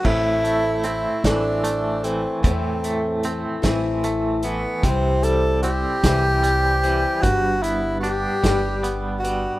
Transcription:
<<
  \new Staff \with { instrumentName = "Tenor saxophone" } { \time 6/8 \key a \minor \tempo 4. = 50 e'4 e'8 d'4 c'8 | c'4 r4. b8 | c'8 a'8 g'2 | fis'8 e'8 g'4 r8 fis'8 | }
  \new Staff \with { instrumentName = "Steel-string acoustic guitar" } { \time 6/8 \key a \minor <a, e a c' e' a'>4 <a c' e' a'>8 <a, e a c' e' a'>4 <a c' e' a'>8 | <a, e a c' e' a'>4 <a c' e' a'>8 <a, e a c' e' a'>4 <a e' a'>8 | <c e g c' e' c''>4 <g c' e' c''>8 <c e g c' e' c''>4 <g c' e' c''>8 | <g d' b'>4 <g d' g' b'>8 <g d' g' b'>4 <d' b'>8 | }
  \new Staff \with { instrumentName = "Clean electric guitar" } { \clef bass \time 6/8 \key a \minor a,8 a8 c'8 e8 a8 e8 | a,8 a8 c'8 e8 a8 e8 | c8 g8 c'8 e8 g8 e8 | g,8 b8 d'8 g8 b8 g8 | }
  \new Staff \with { instrumentName = "Upright bass" } { \clef bass \time 6/8 \key a \minor a,,4. a,,4. | e,4. a,,4. | c,4. c,4. | g,,4. g,,4. | }
  \new DrumStaff \with { instrumentName = "Drums" } \drummode { \time 6/8 <cymc bd>8 hh8 hh8 <hh bd sn>8 hh8 hh8 | <hh bd>8 hh8 hh8 <hh bd sn>8 hh8 hh8 | <hh bd>8 hh8 hh8 <hh bd sn>8 hh8 hh8 | <hh bd>8 hh8 hh8 <hh bd sn>8 hh8 hh8 | }
>>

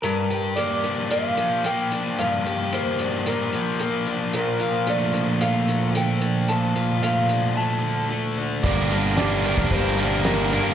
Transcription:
<<
  \new Staff \with { instrumentName = "Clean electric guitar" } { \time 4/4 \key g \minor \tempo 4 = 112 bes'4 d''4 f''4 g''4 | f''4 c''4 bes'4. r8 | bes'4 d''4 f''4 g''4 | a''4 f''4 a''4. r8 |
d''4 d''4 c''4 bes'4 | }
  \new Staff \with { instrumentName = "Overdriven electric guitar" } { \time 4/4 \key g \minor g,8 g'8 bes8 d'8 bes8 f8 bes8 d'8 | g,8 g'8 bes8 d'8 bes8 f8 bes8 d'8 | bes,8 f'8 a8 d'8 a8 d8 a8 d'8 | bes,8 f'8 a8 d'8 a8 d8 a8 d'8 |
<g, d g bes d' g'>8 <g, d g bes d' g'>8 <g, d g bes d' g'>8 <g, d g bes d' g'>8 <g, d g bes d' g'>8 <g, d g bes d' g'>8 <g, d g bes d' g'>8 <g, d g bes d' g'>8 | }
  \new Staff \with { instrumentName = "Overdriven electric guitar" } { \clef bass \time 4/4 \key g \minor r1 | r1 | <bes, f d' f'>1~ | <bes, f d' f'>1 |
<g, d g bes d' bes'>8 <g, d g bes d' bes'>8 <g, d g bes d' bes'>8 <g, d g bes d' bes'>8 <g, d g bes d' bes'>8 <g, d g bes d' bes'>8 <g, d g bes d' bes'>8 <g, d g bes d' bes'>8 | }
  \new Staff \with { instrumentName = "Fingered electric bass" } { \clef bass \time 4/4 \key g \minor r1 | r1 | r1 | r1 |
g,,4.~ g,,16 f,,16 g,,2 | }
  \new DrumStaff \with { instrumentName = "Drums" } \drummode { \time 4/4 hh8 hh8 hh8 hh8 hh8 hh8 hh8 hh8 | hh8 hh8 hh8 hh8 hh8 hh8 hh8 hh8 | hh8 hh8 hh8 hh8 hh8 hh8 hh8 hh8 | hh8 hh8 hh8 hh8 r4 r4 |
<hh bd>8 hh8 <hh sn>8 hh16 <bd sn>16 <hh bd>8 hh8 <hh sn>8 hh8 | }
>>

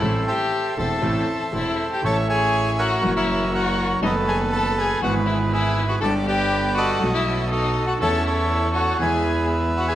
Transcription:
<<
  \new Staff \with { instrumentName = "Bandoneon" } { \time 4/4 \key a \minor \tempo 4 = 120 << { e''8 g''4 a''4. e''8. g''16 | \key a \major a''8 gis''4 fis''8. e''8. fis''8. r16 | dis''8 gis''8 a''8 gis''8 fis''8 e''8 e''8. fis''16 | a''8 g''4 fis''8. e''8. dis''8. fis''16 |
a''8 e''4 fis''8 gis''4 r8 fis''16 gis''16 | } \\ { <a' c''>8 <c'' e''>4 <c'' e''>4. <a' c''>4 | <cis'' e''>8 <cis'' e''>4 <bes' cis''>8. <ais' cis''>8. <ais' cis''>4 | <a' b'>2 b'4 <gis' b'>4 | d''8 <b' d''>4 <a' dis''>8. a'8. <fis' a'>4 |
<cis'' e''>8 <a' cis''>4. <b' e''>2 | } >> }
  \new Staff \with { instrumentName = "Violin" } { \time 4/4 \key a \minor e'8 g'4 a'4. e'8. g'16 | \key a \major a'8 gis'4 fis'8. e'8. fis'8. r16 | dis'8 gis'8 a'8 gis'8 fis'8 e'8 e'8. fis'16 | a'8 g'4 fis'8. e'8. dis'8. fis'16 |
a'8 e'4 fis'8 gis'4 r8 fis'16 gis'16 | }
  \new Staff \with { instrumentName = "String section" } { \time 4/4 \key a \minor r1 | \key a \major <a cis' e'>2 <ais e' fis'>2 | <b dis' a'>2 <b e' gis'>2 | <b d' g'>2 <b fis' a'>2 |
<cis' e' a'>2 <b e' gis'>2 | }
  \new Staff \with { instrumentName = "Grand piano" } { \clef bass \time 4/4 \key a \minor <a,, a, e a c' a'>8 r4 <e,, e, e a c' a'>8 <a,, a, e a c' a'>8 r8 <e,, e, e a c' a'>8 r8 | \key a \major <a,, a, e a cis' cis''>2 <fis, e fis ais cis' fis'>2 | <fis, dis fis a b fis'>2 <gis,, gis, e gis b gis'>2 | <g,, g, d g b g'>2 <b,, b, fis a b fis'>2 |
<e, e a cis' a'>2 <e, e gis b gis'>2 | }
  \new Staff \with { instrumentName = "Double bass" } { \clef bass \time 4/4 \key a \minor a,,8 r4 e,,8 a,,8 r8 e,,8 r8 | \key a \major a,,2 fis,,2 | fis,,2 gis,,2 | g,,2 b,,2 |
e,2 e,2 | }
>>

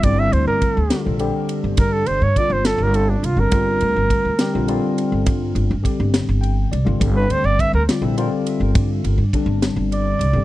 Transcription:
<<
  \new Staff \with { instrumentName = "Muted trumpet" } { \time 6/8 \key g \dorian \tempo 4. = 69 d''16 e''16 c''16 bes'4 r4 r16 | bes'16 a'16 c''16 cis''16 d''16 c''16 a'16 bes'16 a'16 d'16 f'16 bes'16~ | bes'2~ bes'16 r8. | r2. |
r16 b'16 c''16 d''16 e''16 bes'16 r4. | r2 d''4 | }
  \new Staff \with { instrumentName = "Tine electric piano" } { \time 6/8 \key g \dorian r2. | r2. | r2. | r2 g''8 d''8 |
r2. | r2. | }
  \new Staff \with { instrumentName = "Tine electric piano" } { \time 6/8 \key g \dorian <d g c' e'>4~ <d g c' e'>16 r16 <d g c' g'>16 <d g c' f'>16 <d g c' g'>4~ | <d g c' g'>8. r16 <d g c' f'>4. r16 <d g c' d'>16 | <d g c' f'>4~ <d g c' f'>16 r16 <d g c' g'>16 <d g c' f'>16 <d g c' f'>4~ | <d g c' f'>8. r16 <d g c' g'>4. r16 <d g c' f'>16 |
<d g c' g'>4~ <d g c' g'>16 r16 <d g c' f'>16 <d g c' e'>16 <d g c' f'>4~ | <d g c' f'>8. r16 <d g c' d'>4. r16 <d g c' g'>16 | }
  \new Staff \with { instrumentName = "Upright bass" } { \clef bass \time 6/8 \key g \dorian g,,8 d,16 g,,16 r16 d,16 r16 bes,,8 r8 g,,16 | g,8 g,,16 g,16 r16 g,,8 g,,8. c,16 g,,16 | g,,8 d,16 g,,16 r16 d,16 r16 bes,,8 r8 g,,16 | g,8 g,,16 g,16 r16 g,,8 g,,8. c,16 g,,16 |
g,,8 d,16 g,,16 r16 d,16 r16 bes,,8 r8 g,,16 | g,8 g,,16 g,16 r16 g,,8 g,,8. c,16 g,,16 | }
  \new DrumStaff \with { instrumentName = "Drums" } \drummode { \time 6/8 <bd cymr>8 cymr8 <bd cymr>8 <cymr sn>8 cymr8 cymr8 | <bd cymr>8 cymr8 <bd cymr>8 <cymr sn>8 cymr8 cymr8 | <bd cymr>8 cymr8 <bd cymr>8 <cymr sn>8 cymr8 cymr8 | <bd cymr>8 cymr8 <bd cymr>8 <cymr sn>8 cymr8 cymr8 |
<bd cymr>8 cymr8 <bd cymr>8 <cymr sn>8 cymr8 cymr8 | <bd cymr>8 cymr8 <bd cymr>8 <cymr sn>8 cymr8 cymr8 | }
>>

